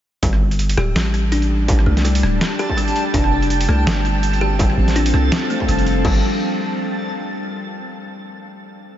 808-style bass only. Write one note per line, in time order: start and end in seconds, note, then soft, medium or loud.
0.23 0.76 G1 loud
0.77 0.94 D1 medium
0.96 1.85 A1 medium
1.87 2.22 C2 loud
2.23 2.40 D1 medium
3.14 3.67 F1 loud
3.69 3.85 C2 loud
3.86 4.76 G1 medium
4.78 5.13 A1 loud
5.14 5.31 C2 loud
5.68 6.04 F1 loud
6.05 6.22 G1 loud